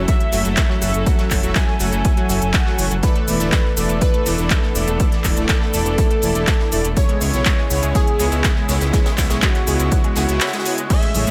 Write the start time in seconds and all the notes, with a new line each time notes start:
Already playing: F#3 C#4 E4 A4
0.08 F#3 A3 F#4 E5, kick, closed hi-hat, cabasa
0.20 closed hi-hat
0.32 F#1 F#3 A3 F#4 E5, snare, closed hi-hat, open hi-hat, cabasa
0.45 F#1 F#3 A3 F#4 E5, closed hi-hat, cabasa
0.57 A3 F#4 E5, kick, snare, clap, closed hi-hat, cabasa
0.69 F#3 F#4, snare
0.82 F#1 F#3 A3 F#4 E5, closed hi-hat, open hi-hat, cabasa
0.94 F#1, closed hi-hat, cabasa
1.06 F#3 A3 F#4 E5, kick, closed hi-hat, cabasa
1.19 F#3 F#4, snare, closed hi-hat
1.31 F#1 A3 F#4 E5, kick, clap, closed hi-hat, open hi-hat, cabasa
1.43 E1 F#3 A3 F#4 E5, closed hi-hat, cabasa
1.55 A3 F#4 E5 G#5, kick, snare, clap, closed hi-hat, cabasa
1.67 snare
1.79 F#1 F#3 A3 F#4 E5, closed hi-hat, open hi-hat, cabasa
1.93 F#1 F#3 F#4, closed hi-hat, cabasa
2.05 A3 F#4 E5, kick, closed hi-hat, cabasa
2.17 F#3 F#4, closed hi-hat
2.29 F#1 F#3 A3 F#4 E5, closed hi-hat, open hi-hat, cabasa
2.42 F#1, closed hi-hat, cabasa
2.54 F#3 A3 F#4 F#5, kick, snare, clap, closed hi-hat, cabasa
2.66 F#3 F#4, snare
2.78 F#1 E3 A3 F#4 C#5, closed hi-hat, open hi-hat, cabasa
2.91 F#1 F#3 F#4, closed hi-hat, cabasa
3.03 E3 A3 B3 D4 E4 A4 B4 D5, kick, closed hi-hat, cabasa
3.16 A3 A4, closed hi-hat
3.28 E1 E3 A3 E4 D5, closed hi-hat, open hi-hat, cabasa
3.40 D1 E3 A3 E4 A4 D5, snare, closed hi-hat, cabasa
3.52 E3 A3 E4 A4 D5, kick, snare, clap, closed hi-hat, cabasa
3.65 snare
3.77 E1 E3 A3 E4 A4 D5, closed hi-hat, open hi-hat, cabasa
3.89 E1 A3 A4, closed hi-hat, cabasa
4.01 E3 A3 E4 B4 D5, kick, closed hi-hat, cabasa
4.14 A3 A4, closed hi-hat
4.26 E1 E3 A3 E4 A4 D5, snare, closed hi-hat, open hi-hat, cabasa
4.38 E1 E3 A3 E4 D5, closed hi-hat, cabasa
4.50 E3 A3 E4 A4 D5, kick, snare, clap, closed hi-hat, cabasa
4.63 A3 A4, snare
4.75 E1 E3 A3 E4 D5, closed hi-hat, open hi-hat, cabasa
4.88 E1 A3 A4, closed hi-hat, cabasa
5.00 E3 A3 E4 A4 D5, kick, closed hi-hat, cabasa
5.12 snare, closed hi-hat
5.24 E1 E3 A3 E4 A4 D5, kick, clap, closed hi-hat, open hi-hat, cabasa
5.37 D1 E3 A3 E4 A4 D5, closed hi-hat, cabasa
5.49 E3 A3 E4 A4 D5, kick, snare, clap, closed hi-hat, cabasa
5.61 A3 A4, snare
5.74 E1 E3 A3 E4 A4 D5, closed hi-hat, open hi-hat, cabasa
5.86 E1, closed hi-hat, cabasa
5.98 E3 A3 E4 A4 D5, kick, closed hi-hat, cabasa
6.11 A3 A4, closed hi-hat
6.22 E1 E3 A3 E4 D5, closed hi-hat, open hi-hat, cabasa
6.35 E1 E3 A3 E4 A4 D5, closed hi-hat, cabasa
6.47 E3 A3 E4 A4 D5, kick, snare, clap, closed hi-hat, cabasa
6.60 snare
6.72 E1 A3 E4 A4 D5, closed hi-hat, open hi-hat, cabasa
6.84 E1 A3 A4, closed hi-hat, cabasa
6.97 C#3 G#3 B3 E4 C#5, kick, closed hi-hat, cabasa
7.09 G#3 G#4, closed hi-hat
7.21 C#2 C#3 G#3 B3 E4 G#4 C#5, closed hi-hat, open hi-hat, cabasa
7.34 B1 C#3 B3 E4 C#5, snare, closed hi-hat, cabasa
7.45 C#3 G#3 B3 E4 G#4 C#5, kick, snare, clap, closed hi-hat, cabasa
7.58 G#3 G#4, snare
7.70 C#2 C#3 B3 E4 C#5, closed hi-hat, open hi-hat, cabasa
7.83 C#2 G#3 G#4, closed hi-hat, cabasa
7.95 C#3 G#3 B3 E4 G#4 C#5, kick, closed hi-hat, cabasa
8.07 closed hi-hat
8.19 C#2 C#3 G#3 B3 E4 G#4 C#5, snare, closed hi-hat, open hi-hat, cabasa
8.32 C#2 C#3 G#3 B3 E4 G#4 C#5, closed hi-hat, cabasa
8.44 C#3 B3 E4 C#5, kick, snare, clap, closed hi-hat, cabasa
8.56 G#3 G#4, snare
8.69 C#2 C#3 G#3 B3 E4 G#4 C#5, snare, closed hi-hat, open hi-hat, cabasa
8.81 C#2, snare, closed hi-hat, cabasa
8.93 C#3 G#3 B3 E4 G#4 C#5, kick, snare, closed hi-hat, cabasa
9.06 G#3 G#4, snare, closed hi-hat
9.17 C#2 C#3 B3 E4 C#5, kick, snare, clap, closed hi-hat, open hi-hat, cabasa
9.30 B1 C#3 G#3 B3 E4 G#4 C#5, snare, closed hi-hat, cabasa
9.42 C#3 G#3 B3 E4 F#4 G#4 C#5, kick, snare, clap, closed hi-hat, cabasa
9.55 snare, closed hi-hat
9.67 C#2 C#3 G#3 B3 E4 G#4 C#5, closed hi-hat, open hi-hat, cabasa
9.80 C#2 G#3 G#4, closed hi-hat, cabasa
9.91 C#3 B3 E4 C#5, kick, closed hi-hat, cabasa
10.04 G#3 G#4, closed hi-hat
10.16 C#2 C#3 B3 E4 G#4 C#5 G#5, snare, closed hi-hat, open hi-hat, cabasa
10.29 C#2 C#3 B3 E4 C#5, snare, closed hi-hat, cabasa
10.41 C#3 B3 E4 C#5 E5, snare, clap, closed hi-hat, cabasa
10.47 snare, closed hi-hat
10.53 G#3 G#4, snare, closed hi-hat
10.60 snare, closed hi-hat
10.66 B3 E4 G#4 C#5 G#5, closed hi-hat, open hi-hat, cabasa
10.78 G#3 G#4, closed hi-hat, cabasa
10.90 A2 G#3 A3 C#4 G#4 C#5 E5, kick, closed hi-hat, crash, cabasa
11.02 G#3 G#4, closed hi-hat
11.14 A1 A2 A3 G#4 C#5, closed hi-hat, open hi-hat, high conga, low conga, cabasa
11.27 E1 A2 G#3 A3 G#4 C#5, snare, closed hi-hat, cabasa